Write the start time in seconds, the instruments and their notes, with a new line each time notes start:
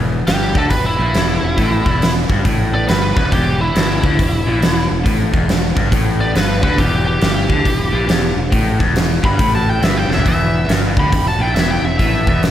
Already playing: fingered electric bass E1, overdriven electric guitar E2
0.27 fingered electric bass G1, overdriven electric guitar G2, lead electric guitar E3 G4, snare, open hi-hat
0.54 fingered electric bass D2, overdriven electric guitar D3, lead electric guitar F#3 A4, kick
0.70 fingered electric bass E1, overdriven electric guitar E2, lead electric guitar G3 B4, kick, open hi-hat
0.86 lead electric guitar B2 E4
0.98 fingered electric bass A#1, overdriven electric guitar A#2
1.14 fingered electric bass E1, overdriven electric guitar E2, snare, open hi-hat
1.42 fingered electric bass E1, overdriven electric guitar E2
1.57 fingered electric bass A1, overdriven electric guitar A2, kick, open hi-hat
1.86 fingered electric bass E1, overdriven electric guitar E2, kick
2.02 snare, open hi-hat
2.29 fingered electric bass G1, overdriven electric guitar G2, kick
2.44 fingered electric bass A1, overdriven electric guitar A2, kick, open hi-hat
2.74 lead electric guitar B3 D5
2.86 fingered electric bass G1, overdriven electric guitar G2, lead electric guitar G3 B4, snare, open hi-hat
3.15 fingered electric bass E1, overdriven electric guitar E2, lead electric guitar G3 B4, kick
3.31 fingered electric bass E1, overdriven electric guitar E2, lead electric guitar E3 G4, kick, open hi-hat
3.61 lead electric guitar B2 E4
3.74 fingered electric bass G1, overdriven electric guitar G2, snare, open hi-hat
4.03 fingered electric bass D2, overdriven electric guitar D3, kick
4.19 fingered electric bass E1, overdriven electric guitar E2, kick, open hi-hat
4.46 fingered electric bass A#1, overdriven electric guitar A#2
4.60 fingered electric bass E1, overdriven electric guitar E2, snare, open hi-hat
4.88 fingered electric bass E1, overdriven electric guitar E2
5.04 fingered electric bass A1, overdriven electric guitar A2, kick, open hi-hat
5.32 fingered electric bass E1, overdriven electric guitar E2, kick
5.49 snare, open hi-hat
5.75 fingered electric bass G1, overdriven electric guitar G2, kick
5.90 fingered electric bass A1, overdriven electric guitar A2, kick, open hi-hat
6.20 lead electric guitar B3 D5
6.33 fingered electric bass G1, overdriven electric guitar G2, lead electric guitar G3 B4, snare, open hi-hat
6.61 fingered electric bass D2, overdriven electric guitar D3, lead electric guitar G3 B4, kick
6.77 fingered electric bass E1, overdriven electric guitar E2, lead electric guitar E3 G4, kick, open hi-hat
7.07 lead electric guitar E3 G4
7.20 fingered electric bass G1, overdriven electric guitar G2, snare, open hi-hat
7.49 fingered electric bass D2, overdriven electric guitar D3, kick
7.65 fingered electric bass E1, overdriven electric guitar E2, kick, open hi-hat
7.92 fingered electric bass A#1, overdriven electric guitar A#2
8.07 fingered electric bass E1, overdriven electric guitar E2, snare, open hi-hat
8.36 fingered electric bass E1, overdriven electric guitar E2
8.51 fingered electric bass A1, overdriven electric guitar A2, kick, open hi-hat
8.79 fingered electric bass E1, overdriven electric guitar E2, kick
8.96 snare, open hi-hat
9.23 fingered electric bass G1, overdriven electric guitar G2, lead electric guitar G4 B5, kick
9.38 fingered electric bass A1, overdriven electric guitar A2, kick, open hi-hat
9.55 lead electric guitar F#4 A5
9.69 lead electric guitar E4 G5
9.82 fingered electric bass G1, overdriven electric guitar G2, lead electric guitar B3 E5, snare, open hi-hat
9.97 lead electric guitar E4 G5
10.09 fingered electric bass E1, overdriven electric guitar E2, snare
10.13 lead electric guitar C4 E5
10.18 floor tom
10.25 fingered electric bass E1, overdriven electric guitar E2, lead electric guitar B3, kick, open hi-hat
10.29 lead electric guitar E5
10.68 fingered electric bass G1, overdriven electric guitar G2, snare, open hi-hat
10.97 fingered electric bass D2, overdriven electric guitar D3, lead electric guitar G4 B5, kick
11.12 fingered electric bass E1, overdriven electric guitar E2, kick, open hi-hat
11.28 lead electric guitar F#4 A5
11.39 fingered electric bass A#1, overdriven electric guitar A#2, lead electric guitar E4 G5
11.54 fingered electric bass E1, overdriven electric guitar E2, lead electric guitar B3 E5, snare, open hi-hat
11.71 lead electric guitar E4 G5
11.82 fingered electric bass E1, overdriven electric guitar E2, lead electric guitar C4 E5
11.98 fingered electric bass A1, overdriven electric guitar A2, lead electric guitar B3 E5, kick, open hi-hat
12.27 fingered electric bass E1, overdriven electric guitar E2, kick
12.43 snare, open hi-hat